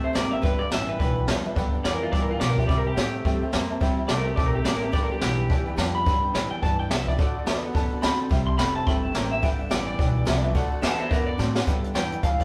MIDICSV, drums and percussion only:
0, 0, Header, 1, 2, 480
1, 0, Start_track
1, 0, Tempo, 280899
1, 742, Time_signature, 4, 2, 24, 8
1, 21261, End_track
2, 0, Start_track
2, 0, Title_t, "Drums"
2, 258, Note_on_c, 9, 38, 109
2, 258, Note_on_c, 9, 46, 56
2, 428, Note_off_c, 9, 38, 0
2, 428, Note_off_c, 9, 46, 0
2, 739, Note_on_c, 9, 46, 54
2, 741, Note_on_c, 9, 36, 120
2, 910, Note_off_c, 9, 46, 0
2, 912, Note_off_c, 9, 36, 0
2, 1223, Note_on_c, 9, 38, 114
2, 1223, Note_on_c, 9, 46, 52
2, 1394, Note_off_c, 9, 38, 0
2, 1394, Note_off_c, 9, 46, 0
2, 1707, Note_on_c, 9, 36, 109
2, 1708, Note_on_c, 9, 46, 46
2, 1877, Note_off_c, 9, 36, 0
2, 1879, Note_off_c, 9, 46, 0
2, 2184, Note_on_c, 9, 38, 101
2, 2355, Note_off_c, 9, 38, 0
2, 2671, Note_on_c, 9, 46, 47
2, 2672, Note_on_c, 9, 36, 114
2, 2842, Note_off_c, 9, 46, 0
2, 2843, Note_off_c, 9, 36, 0
2, 3159, Note_on_c, 9, 38, 114
2, 3159, Note_on_c, 9, 46, 50
2, 3330, Note_off_c, 9, 38, 0
2, 3330, Note_off_c, 9, 46, 0
2, 3635, Note_on_c, 9, 46, 54
2, 3636, Note_on_c, 9, 36, 112
2, 3806, Note_off_c, 9, 46, 0
2, 3807, Note_off_c, 9, 36, 0
2, 4114, Note_on_c, 9, 38, 103
2, 4114, Note_on_c, 9, 46, 53
2, 4285, Note_off_c, 9, 38, 0
2, 4285, Note_off_c, 9, 46, 0
2, 4403, Note_on_c, 9, 36, 70
2, 4574, Note_off_c, 9, 36, 0
2, 4597, Note_on_c, 9, 36, 114
2, 4601, Note_on_c, 9, 46, 59
2, 4768, Note_off_c, 9, 36, 0
2, 4771, Note_off_c, 9, 46, 0
2, 5078, Note_on_c, 9, 38, 108
2, 5078, Note_on_c, 9, 46, 56
2, 5249, Note_off_c, 9, 38, 0
2, 5249, Note_off_c, 9, 46, 0
2, 5552, Note_on_c, 9, 46, 50
2, 5555, Note_on_c, 9, 36, 100
2, 5723, Note_off_c, 9, 46, 0
2, 5726, Note_off_c, 9, 36, 0
2, 6027, Note_on_c, 9, 38, 112
2, 6027, Note_on_c, 9, 46, 56
2, 6198, Note_off_c, 9, 38, 0
2, 6198, Note_off_c, 9, 46, 0
2, 6508, Note_on_c, 9, 46, 46
2, 6513, Note_on_c, 9, 36, 123
2, 6679, Note_off_c, 9, 46, 0
2, 6684, Note_off_c, 9, 36, 0
2, 6982, Note_on_c, 9, 38, 117
2, 6982, Note_on_c, 9, 46, 54
2, 7153, Note_off_c, 9, 38, 0
2, 7153, Note_off_c, 9, 46, 0
2, 7470, Note_on_c, 9, 46, 49
2, 7473, Note_on_c, 9, 36, 115
2, 7641, Note_off_c, 9, 46, 0
2, 7644, Note_off_c, 9, 36, 0
2, 7948, Note_on_c, 9, 38, 101
2, 7948, Note_on_c, 9, 46, 53
2, 8119, Note_off_c, 9, 38, 0
2, 8119, Note_off_c, 9, 46, 0
2, 8426, Note_on_c, 9, 46, 55
2, 8432, Note_on_c, 9, 36, 109
2, 8597, Note_off_c, 9, 46, 0
2, 8603, Note_off_c, 9, 36, 0
2, 8910, Note_on_c, 9, 38, 119
2, 8910, Note_on_c, 9, 46, 56
2, 9081, Note_off_c, 9, 38, 0
2, 9081, Note_off_c, 9, 46, 0
2, 9396, Note_on_c, 9, 36, 118
2, 9396, Note_on_c, 9, 46, 56
2, 9567, Note_off_c, 9, 36, 0
2, 9567, Note_off_c, 9, 46, 0
2, 9878, Note_on_c, 9, 38, 122
2, 9878, Note_on_c, 9, 46, 58
2, 10049, Note_off_c, 9, 38, 0
2, 10049, Note_off_c, 9, 46, 0
2, 10363, Note_on_c, 9, 36, 117
2, 10363, Note_on_c, 9, 46, 50
2, 10534, Note_off_c, 9, 36, 0
2, 10534, Note_off_c, 9, 46, 0
2, 10848, Note_on_c, 9, 38, 104
2, 11019, Note_off_c, 9, 38, 0
2, 11325, Note_on_c, 9, 36, 108
2, 11325, Note_on_c, 9, 46, 54
2, 11496, Note_off_c, 9, 36, 0
2, 11496, Note_off_c, 9, 46, 0
2, 11803, Note_on_c, 9, 38, 114
2, 11803, Note_on_c, 9, 46, 55
2, 11974, Note_off_c, 9, 38, 0
2, 11974, Note_off_c, 9, 46, 0
2, 12092, Note_on_c, 9, 36, 68
2, 12263, Note_off_c, 9, 36, 0
2, 12283, Note_on_c, 9, 46, 57
2, 12284, Note_on_c, 9, 36, 119
2, 12453, Note_off_c, 9, 46, 0
2, 12455, Note_off_c, 9, 36, 0
2, 12762, Note_on_c, 9, 38, 103
2, 12762, Note_on_c, 9, 46, 55
2, 12933, Note_off_c, 9, 38, 0
2, 12933, Note_off_c, 9, 46, 0
2, 13240, Note_on_c, 9, 36, 107
2, 13240, Note_on_c, 9, 46, 54
2, 13411, Note_off_c, 9, 36, 0
2, 13411, Note_off_c, 9, 46, 0
2, 13721, Note_on_c, 9, 38, 109
2, 13892, Note_off_c, 9, 38, 0
2, 14193, Note_on_c, 9, 46, 51
2, 14196, Note_on_c, 9, 36, 114
2, 14364, Note_off_c, 9, 46, 0
2, 14367, Note_off_c, 9, 36, 0
2, 14674, Note_on_c, 9, 38, 127
2, 14845, Note_off_c, 9, 38, 0
2, 15150, Note_on_c, 9, 46, 46
2, 15154, Note_on_c, 9, 36, 119
2, 15321, Note_off_c, 9, 46, 0
2, 15325, Note_off_c, 9, 36, 0
2, 15630, Note_on_c, 9, 38, 110
2, 15630, Note_on_c, 9, 46, 50
2, 15801, Note_off_c, 9, 38, 0
2, 15801, Note_off_c, 9, 46, 0
2, 16108, Note_on_c, 9, 46, 56
2, 16113, Note_on_c, 9, 36, 108
2, 16279, Note_off_c, 9, 46, 0
2, 16283, Note_off_c, 9, 36, 0
2, 16588, Note_on_c, 9, 38, 116
2, 16759, Note_off_c, 9, 38, 0
2, 17066, Note_on_c, 9, 46, 53
2, 17069, Note_on_c, 9, 36, 120
2, 17236, Note_off_c, 9, 46, 0
2, 17240, Note_off_c, 9, 36, 0
2, 17541, Note_on_c, 9, 38, 100
2, 17541, Note_on_c, 9, 46, 51
2, 17712, Note_off_c, 9, 38, 0
2, 17712, Note_off_c, 9, 46, 0
2, 18023, Note_on_c, 9, 46, 62
2, 18026, Note_on_c, 9, 36, 105
2, 18194, Note_off_c, 9, 46, 0
2, 18197, Note_off_c, 9, 36, 0
2, 18506, Note_on_c, 9, 38, 105
2, 18677, Note_off_c, 9, 38, 0
2, 18979, Note_on_c, 9, 46, 50
2, 18983, Note_on_c, 9, 36, 115
2, 19150, Note_off_c, 9, 46, 0
2, 19154, Note_off_c, 9, 36, 0
2, 19466, Note_on_c, 9, 38, 58
2, 19637, Note_off_c, 9, 38, 0
2, 19744, Note_on_c, 9, 38, 87
2, 19915, Note_off_c, 9, 38, 0
2, 19940, Note_on_c, 9, 42, 87
2, 19944, Note_on_c, 9, 36, 118
2, 20111, Note_off_c, 9, 42, 0
2, 20115, Note_off_c, 9, 36, 0
2, 20231, Note_on_c, 9, 42, 65
2, 20402, Note_off_c, 9, 42, 0
2, 20423, Note_on_c, 9, 38, 115
2, 20423, Note_on_c, 9, 42, 87
2, 20594, Note_off_c, 9, 38, 0
2, 20594, Note_off_c, 9, 42, 0
2, 20707, Note_on_c, 9, 42, 72
2, 20878, Note_off_c, 9, 42, 0
2, 20899, Note_on_c, 9, 42, 81
2, 20902, Note_on_c, 9, 36, 117
2, 21069, Note_off_c, 9, 42, 0
2, 21073, Note_off_c, 9, 36, 0
2, 21189, Note_on_c, 9, 36, 89
2, 21191, Note_on_c, 9, 42, 75
2, 21261, Note_off_c, 9, 36, 0
2, 21261, Note_off_c, 9, 42, 0
2, 21261, End_track
0, 0, End_of_file